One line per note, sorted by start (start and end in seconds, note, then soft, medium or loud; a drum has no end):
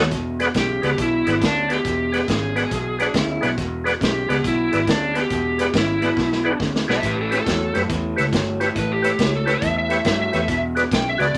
0.00 0.13 D#2 loud
0.00 0.10 B2 medium
0.00 0.10 F#3 medium
0.11 0.48 E1 medium
0.11 0.51 E2 medium
0.11 0.52 B2 loud
0.11 kick medium
0.11 snare soft
0.11 closed hi-hat medium
0.39 0.47 G#4 medium
0.39 0.47 B4 medium
0.39 0.48 D5 medium
0.39 0.48 F#5 loud
0.39 snare soft
0.39 closed hi-hat medium
0.54 0.79 B1 medium
0.54 0.80 E2 medium
0.54 0.80 C#3 medium
0.54 0.98 G4 medium
0.54 kick medium
0.54 snare loud
0.54 closed hi-hat medium
0.82 0.96 C#2 medium
0.82 0.97 E2 medium
0.82 0.97 B2 medium
0.82 0.90 G#4 medium
0.82 0.90 B4 medium
0.82 0.91 D5 medium
0.82 0.91 F#5 medium
0.82 snare soft
0.82 closed hi-hat medium
0.98 1.22 B1 medium
0.98 1.38 E2 medium
0.98 1.38 B2 medium
0.98 1.42 E4 medium
0.98 kick medium
0.98 snare soft
0.98 closed hi-hat medium
1.26 1.39 G#1 medium
1.26 1.34 G#4 medium
1.26 1.34 B4 medium
1.26 1.34 D5 medium
1.26 1.35 F#5 medium
1.26 snare soft
1.26 closed hi-hat medium
1.40 1.78 D2 medium
1.40 1.66 E2 medium
1.40 1.67 C#3 medium
1.40 kick medium
1.40 snare loud
1.40 closed hi-hat medium
1.45 1.71 D4 medium
1.69 1.83 E2 medium
1.69 1.83 B2 medium
1.69 2.28 G4 medium
1.69 1.77 G#4 medium
1.69 1.77 B4 medium
1.69 1.77 D5 medium
1.69 1.78 F#5 medium
1.69 snare soft
1.69 closed hi-hat medium
1.84 2.22 E1 medium
1.84 2.25 E2 medium
1.84 2.25 B2 medium
1.84 kick medium
1.84 snare soft
1.84 closed hi-hat medium
2.12 2.20 G#4 medium
2.12 2.21 B4 medium
2.12 2.21 D5 medium
2.12 2.21 F#5 medium
2.12 snare soft
2.12 closed hi-hat medium
2.27 2.65 G#1 medium
2.27 2.53 E2 medium
2.27 2.53 C#3 medium
2.27 3.13 G#4 medium
2.27 kick medium
2.27 snare loud
2.27 closed hi-hat medium
2.56 2.69 E2 medium
2.56 2.70 B2 medium
2.56 2.64 G#4 medium
2.56 2.64 B4 medium
2.56 2.64 D5 medium
2.56 2.64 F#5 medium
2.56 snare soft
2.56 closed hi-hat medium
2.71 3.08 B1 medium
2.71 3.11 E2 medium
2.71 3.12 B2 medium
2.71 kick medium
2.71 snare soft
2.71 closed hi-hat medium
2.99 3.18 D4 medium
2.99 3.07 G#4 medium
2.99 3.07 B4 medium
2.99 3.07 D5 medium
2.99 3.08 F#5 medium
2.99 snare soft
2.99 closed hi-hat medium
3.14 3.38 D2 medium
3.14 3.40 E2 medium
3.14 3.40 C#3 loud
3.14 3.30 E4 medium
3.14 kick medium
3.14 snare loud
3.14 closed hi-hat medium
3.31 3.53 E4 medium
3.41 3.56 B1 loud
3.41 3.56 E2 medium
3.41 3.56 B2 medium
3.41 3.49 G#4 medium
3.41 3.50 B4 medium
3.41 3.50 D5 medium
3.41 3.50 F#5 medium
3.41 snare soft
3.41 closed hi-hat medium
3.57 3.94 E1 medium
3.57 3.98 E2 medium
3.57 3.98 B2 medium
3.57 kick medium
3.57 snare soft
3.57 closed hi-hat medium
3.84 3.93 G#4 medium
3.84 3.93 B4 medium
3.84 3.94 D5 medium
3.84 3.94 F#5 loud
3.84 snare soft
3.84 closed hi-hat medium
4.01 4.25 B1 medium
4.01 4.26 E2 medium
4.01 4.27 C#3 medium
4.01 4.45 G4 medium
4.01 kick medium
4.01 snare loud
4.01 closed hi-hat medium
4.29 4.42 C#2 medium
4.29 4.42 E2 medium
4.29 4.43 B2 medium
4.29 4.36 G#4 medium
4.29 4.37 B4 medium
4.29 4.37 D5 medium
4.29 4.37 F#5 medium
4.29 snare soft
4.29 closed hi-hat medium
4.43 4.68 B1 medium
4.43 4.84 E2 medium
4.43 4.84 B2 medium
4.43 4.88 E4 medium
4.43 kick medium
4.43 snare soft
4.43 closed hi-hat medium
4.72 4.86 G#1 medium
4.72 4.80 G#4 medium
4.72 4.80 B4 medium
4.72 4.80 D5 medium
4.72 4.81 E5 medium
4.72 snare soft
4.72 closed hi-hat medium
4.87 5.24 D2 medium
4.87 5.13 E2 medium
4.87 5.13 C#3 loud
4.87 5.16 D4 medium
4.87 kick medium
4.87 snare loud
4.87 closed hi-hat medium
5.14 5.29 E2 medium
5.14 5.29 B2 medium
5.14 5.22 G#4 medium
5.14 5.23 B4 medium
5.14 5.23 D5 medium
5.14 5.23 F#5 medium
5.14 snare soft
5.14 closed hi-hat medium
5.19 5.74 G4 medium
5.30 5.67 E1 medium
5.30 5.71 E2 medium
5.30 5.71 B2 medium
5.30 kick medium
5.30 snare soft
5.30 closed hi-hat medium
5.58 5.66 G#4 medium
5.58 5.67 B4 medium
5.58 5.67 D5 medium
5.58 5.68 F#5 medium
5.58 snare soft
5.58 closed hi-hat medium
5.74 6.11 G#1 medium
5.74 5.99 E2 medium
5.74 5.99 C#3 medium
5.74 6.59 E4 medium
5.74 kick medium
5.74 snare loud
5.74 closed hi-hat medium
6.01 6.16 E2 medium
6.01 6.16 B2 medium
6.01 6.09 G#4 medium
6.01 6.10 B4 medium
6.01 6.10 D5 medium
6.01 6.10 F#5 medium
6.01 snare soft
6.01 closed hi-hat medium
6.17 6.54 B1 medium
6.17 6.57 E2 medium
6.17 6.57 B2 medium
6.17 kick medium
6.17 snare medium
6.33 snare medium
6.44 6.52 G#4 medium
6.44 6.53 B4 medium
6.44 6.53 D5 medium
6.44 6.53 F#5 loud
6.59 6.84 D2 medium
6.59 6.85 E2 medium
6.59 6.86 C#3 medium
6.59 kick medium
6.59 snare medium
6.76 snare medium
6.88 7.01 B1 medium
6.88 7.02 E2 medium
6.88 7.02 B2 medium
6.88 6.96 G#4 medium
6.88 7.04 G#4 medium
6.88 6.96 B4 medium
6.88 6.96 D5 medium
6.88 7.04 E5 medium
6.88 6.97 F#5 medium
6.88 snare medium
7.03 7.40 A1 medium
7.03 7.43 A2 medium
7.03 7.44 E3 loud
7.03 7.17 G4 medium
7.03 7.18 B4 medium
7.03 kick medium
7.03 snare soft
7.03 closed hi-hat medium
7.21 7.33 C#4 medium
7.21 7.33 A4 medium
7.31 7.39 G4 medium
7.31 7.39 B4 medium
7.31 7.39 C#5 medium
7.31 7.40 E5 medium
7.31 snare soft
7.31 closed hi-hat medium
7.36 7.76 A4 medium
7.46 7.71 E2 medium
7.46 7.72 A2 medium
7.46 7.72 F#3 medium
7.46 kick medium
7.46 snare loud
7.46 closed hi-hat medium
7.74 7.88 F#2 medium
7.74 7.88 A2 medium
7.74 7.88 E3 medium
7.74 7.82 G4 medium
7.74 7.82 B4 medium
7.74 7.83 C#5 medium
7.74 7.83 E5 medium
7.74 snare soft
7.74 closed hi-hat medium
7.89 8.14 E2 medium
7.89 8.30 A2 medium
7.89 8.30 E3 medium
7.89 kick medium
7.89 snare soft
7.89 closed hi-hat medium
8.16 8.31 C#2 medium
8.16 8.25 G4 medium
8.16 8.25 B4 medium
8.16 8.25 C#5 medium
8.16 8.26 E5 medium
8.16 snare soft
8.16 closed hi-hat medium
8.32 8.69 G1 medium
8.32 8.58 A2 medium
8.32 8.58 F#3 medium
8.32 kick medium
8.32 snare loud
8.32 closed hi-hat medium
8.60 8.74 A2 medium
8.60 8.75 E3 medium
8.60 8.68 G4 medium
8.60 8.68 B4 medium
8.60 8.69 C#5 medium
8.60 8.69 E5 medium
8.60 snare soft
8.60 closed hi-hat medium
8.75 9.13 A1 medium
8.75 9.16 A2 medium
8.75 9.16 E3 medium
8.75 8.91 B4 medium
8.75 kick medium
8.75 snare soft
8.75 closed hi-hat medium
8.92 9.33 G4 medium
9.02 9.11 G4 medium
9.02 9.11 B4 medium
9.02 9.12 C#5 medium
9.02 9.12 E5 medium
9.02 snare soft
9.02 closed hi-hat medium
9.18 9.56 C#2 medium
9.18 9.44 A2 medium
9.18 9.44 F#3 medium
9.18 kick medium
9.18 snare loud
9.18 closed hi-hat medium
9.36 9.64 A4 loud
9.46 9.61 A2 medium
9.46 9.61 E3 medium
9.46 9.54 G4 medium
9.46 9.54 B4 medium
9.46 9.55 C#5 medium
9.46 9.55 E5 medium
9.46 snare soft
9.46 closed hi-hat medium
9.62 9.99 E2 medium
9.62 10.02 A2 medium
9.62 10.03 E3 medium
9.62 9.77 E5 medium
9.62 kick medium
9.62 snare soft
9.62 closed hi-hat medium
9.78 10.05 E5 medium
9.89 9.97 G4 medium
9.89 9.98 B4 medium
9.89 9.98 C#5 medium
9.89 9.98 E5 medium
9.89 snare soft
9.89 closed hi-hat medium
10.05 10.29 G2 medium
10.05 10.31 A2 medium
10.05 10.31 F#3 loud
10.05 10.20 E5 medium
10.05 kick medium
10.05 snare loud
10.05 closed hi-hat medium
10.22 10.63 E5 medium
10.32 10.46 E2 medium
10.32 10.47 A2 medium
10.32 10.47 E3 medium
10.32 10.40 G4 medium
10.32 10.41 B4 medium
10.32 10.41 C#5 medium
10.32 10.41 E5 medium
10.32 snare soft
10.32 closed hi-hat medium
10.48 10.85 E1 medium
10.48 10.88 E2 medium
10.48 10.89 B2 medium
10.48 kick medium
10.48 snare soft
10.48 closed hi-hat medium
10.75 10.83 F#4 medium
10.75 10.84 G#4 medium
10.75 10.84 B4 medium
10.75 10.84 D5 medium
10.75 snare soft
10.75 closed hi-hat medium
10.91 11.15 B1 loud
10.91 11.17 E2 medium
10.91 11.17 C#3 medium
10.91 11.07 G5 medium
10.91 kick medium
10.91 snare loud
10.91 closed hi-hat medium
11.09 11.21 E5 medium
11.18 11.32 C#2 medium
11.18 11.33 E2 medium
11.18 11.33 B2 medium
11.18 11.26 F#4 medium
11.18 11.26 G#4 medium
11.18 11.27 B4 medium
11.18 11.27 D5 medium
11.18 11.35 D5 medium
11.18 snare soft
11.18 closed hi-hat soft
11.34 11.38 B1 medium
11.34 11.38 E2 medium
11.34 kick medium